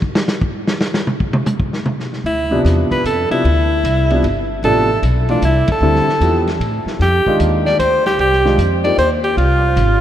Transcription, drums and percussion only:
0.02 kick
0.15 snare
0.28 snare, hi-hat pedal
0.41 kick
0.67 snare
0.81 snare
0.94 snare
1.07 mid tom
1.20 kick
1.33 mid tom
1.46 hi-hat pedal, mid tom
1.60 kick
1.73 snare
1.86 mid tom
2.00 snare
2.13 snare
2.26 ride
2.66 snare, hi-hat pedal, ride
2.91 kick, ride
3.05 hi-hat pedal, ride
3.31 ride
3.45 ride
3.85 hi-hat pedal, ride
4.10 ride
4.24 ride
4.64 ride
5.03 hi-hat pedal, ride
5.29 ride
5.42 hi-hat pedal, ride
5.68 kick, ride
5.95 snare
6.09 snare
6.21 hi-hat pedal, ride
6.47 snare, ride
6.61 ride
6.87 snare
7.01 snare, ride
7.26 kick
7.40 hi-hat pedal, ride
7.66 snare
7.80 hi-hat pedal, ride
8.06 snare, ride
8.19 ride
8.33 snare
8.46 snare
8.59 hi-hat pedal, ride
8.85 ride
8.98 hi-hat pedal, ride
9.24 ride
9.38 ride
9.77 hi-hat pedal, ride

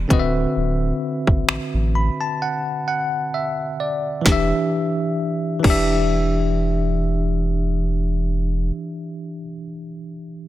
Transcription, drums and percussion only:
0.10 kick, closed hi-hat
1.27 kick
1.49 finger snap
4.26 kick, snare
5.64 kick, crash

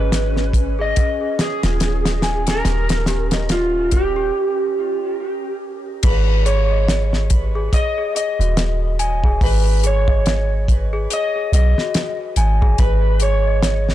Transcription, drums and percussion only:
0.12 snare, closed hi-hat
0.36 snare
0.53 kick, closed hi-hat
0.96 kick, closed hi-hat
1.39 snare, closed hi-hat
1.63 snare, closed hi-hat
1.80 snare, closed hi-hat
2.05 snare, closed hi-hat
2.22 snare, closed hi-hat
2.47 snare, closed hi-hat
2.65 snare, closed hi-hat
2.89 snare, closed hi-hat
3.06 snare, closed hi-hat
3.31 snare, closed hi-hat
3.49 snare, closed hi-hat
3.91 kick, closed hi-hat
6.03 kick, closed hi-hat, crash
6.46 closed hi-hat
6.88 snare, closed hi-hat
7.13 snare
7.30 kick, closed hi-hat
7.73 kick, closed hi-hat
8.16 closed hi-hat
8.41 closed hi-hat
8.57 snare, closed hi-hat
8.99 closed hi-hat
9.24 kick
9.41 kick, open hi-hat
9.83 closed hi-hat
10.08 kick
10.26 snare, closed hi-hat
10.68 kick, closed hi-hat
11.10 closed hi-hat
11.53 closed hi-hat
11.78 snare
11.94 snare, closed hi-hat
12.36 closed hi-hat
12.62 kick
12.78 kick, closed hi-hat
13.20 closed hi-hat
13.63 snare, closed hi-hat
13.89 snare

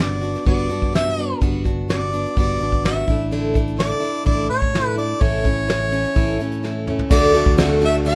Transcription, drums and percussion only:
0.00 snare
0.23 closed hi-hat
0.35 snare, closed hi-hat
0.46 kick, closed hi-hat
0.71 closed hi-hat
0.82 kick
0.94 snare, closed hi-hat
1.18 closed hi-hat
1.42 kick, closed hi-hat
1.65 kick, closed hi-hat
1.89 snare, closed hi-hat
2.13 closed hi-hat
2.26 closed hi-hat
2.37 kick, closed hi-hat
2.61 closed hi-hat
2.72 kick, closed hi-hat
2.84 snare, closed hi-hat
3.08 kick, closed hi-hat
3.32 closed hi-hat
3.55 kick, closed hi-hat
3.67 closed hi-hat
3.79 snare, closed hi-hat
4.03 closed hi-hat
4.15 closed hi-hat
4.27 kick, closed hi-hat
4.51 closed hi-hat
4.62 kick
4.74 snare, closed hi-hat
4.98 closed hi-hat
5.21 kick, closed hi-hat
5.45 kick, closed hi-hat
5.69 snare, closed hi-hat
5.93 closed hi-hat
6.05 closed hi-hat
6.16 kick, closed hi-hat
6.40 closed hi-hat
6.52 closed hi-hat
6.64 snare
6.87 mid tom
6.99 floor tom
7.11 kick, crash
7.34 ride
7.46 kick
7.58 snare, ride
7.81 ride
8.05 ride

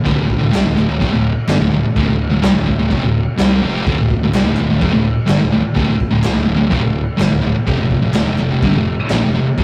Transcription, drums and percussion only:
0.06 kick, crash
0.30 kick
0.54 snare, clap, crash
0.78 clap
1.01 kick, crash
1.48 snare, clap, crash
1.96 kick, crash
2.43 snare, clap, crash
2.68 kick
2.91 kick, crash
3.39 snare, clap, crash
3.87 kick, crash
4.10 kick
4.34 snare, clap, crash
4.57 clap
4.81 kick, crash
5.28 snare, clap, crash
5.76 kick, crash
6.00 kick
6.24 snare, clap, crash
6.71 kick, crash
7.20 snare, clap, crash
7.67 kick, crash
7.91 kick
8.14 snare, clap, crash
8.38 clap
8.62 kick, crash
9.09 snare, clap, crash
9.58 kick, crash

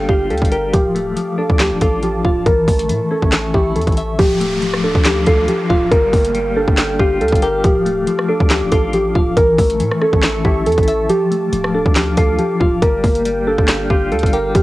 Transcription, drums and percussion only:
0.09 kick
0.30 closed hi-hat
0.38 closed hi-hat
0.42 kick, closed hi-hat
0.52 closed hi-hat
0.74 kick, closed hi-hat
0.96 closed hi-hat
1.17 closed hi-hat
1.50 kick
1.59 snare, clap, closed hi-hat
1.81 kick, closed hi-hat
2.03 closed hi-hat
2.25 kick
2.46 kick, closed hi-hat
2.68 kick, closed hi-hat, open hi-hat
2.79 closed hi-hat
2.89 closed hi-hat
3.22 kick
3.32 snare, clap, closed hi-hat
3.54 kick
3.76 closed hi-hat
3.81 closed hi-hat
3.87 kick, closed hi-hat
3.92 closed hi-hat
3.97 closed hi-hat
4.19 kick, closed hi-hat
4.41 closed hi-hat
4.62 closed hi-hat
4.74 cross-stick
4.95 kick
5.05 snare, clap, closed hi-hat
5.26 kick, closed hi-hat
5.48 closed hi-hat
5.70 kick
5.92 kick, closed hi-hat
6.13 kick, closed hi-hat, open hi-hat
6.25 closed hi-hat
6.35 closed hi-hat
6.68 kick
6.77 snare, clap, closed hi-hat
6.99 kick
7.21 closed hi-hat
7.28 closed hi-hat
7.32 kick, closed hi-hat
7.42 closed hi-hat
7.64 kick, closed hi-hat
7.86 closed hi-hat
8.07 closed hi-hat
8.19 cross-stick
8.40 kick
8.50 snare, clap, closed hi-hat
8.72 kick, closed hi-hat
8.93 closed hi-hat
9.15 kick
9.37 kick, closed hi-hat
9.58 kick, closed hi-hat, open hi-hat
9.70 closed hi-hat
9.80 closed hi-hat
9.91 cross-stick
10.02 cross-stick
10.13 kick
10.23 snare, clap, closed hi-hat
10.45 kick
10.66 closed hi-hat
10.72 closed hi-hat
10.78 kick, closed hi-hat
10.83 closed hi-hat
10.88 closed hi-hat
11.09 closed hi-hat
11.32 closed hi-hat
11.53 closed hi-hat
11.64 cross-stick
11.86 kick
11.95 snare, clap, closed hi-hat
12.17 kick, closed hi-hat
12.39 closed hi-hat
12.61 kick
12.82 kick, closed hi-hat
13.04 kick, closed hi-hat, open hi-hat
13.15 closed hi-hat
13.25 closed hi-hat
13.58 kick
13.68 snare, clap, closed hi-hat
13.90 kick
14.12 closed hi-hat
14.19 closed hi-hat
14.23 kick, closed hi-hat
14.33 closed hi-hat
14.55 kick, closed hi-hat

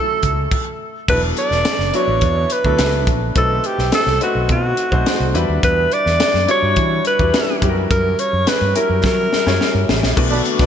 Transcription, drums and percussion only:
0.23 kick, closed hi-hat
0.51 kick, crash
1.08 kick, crash
1.37 closed hi-hat
1.51 snare
1.65 snare, closed hi-hat
1.80 snare
1.94 closed hi-hat
2.21 kick, closed hi-hat
2.50 closed hi-hat
2.65 kick
2.79 snare, closed hi-hat
3.07 kick, closed hi-hat
3.35 kick, closed hi-hat
3.64 closed hi-hat
3.79 snare
3.92 snare, closed hi-hat
4.07 snare
4.21 closed hi-hat
4.49 kick, closed hi-hat
4.77 closed hi-hat
4.92 kick
5.06 snare, closed hi-hat
5.35 closed hi-hat
5.63 kick, closed hi-hat
5.92 closed hi-hat
6.06 snare
6.20 snare, closed hi-hat
6.35 snare
6.49 closed hi-hat
6.76 kick, closed hi-hat
7.05 closed hi-hat
7.19 kick
7.34 snare, closed hi-hat
7.62 kick, closed hi-hat
7.91 kick, closed hi-hat
8.19 closed hi-hat
8.47 snare, closed hi-hat
8.76 closed hi-hat
9.04 kick, snare
9.33 snare
9.47 snare
9.61 snare
9.89 snare
10.03 snare
10.17 kick, crash
10.45 closed hi-hat
10.59 kick, snare

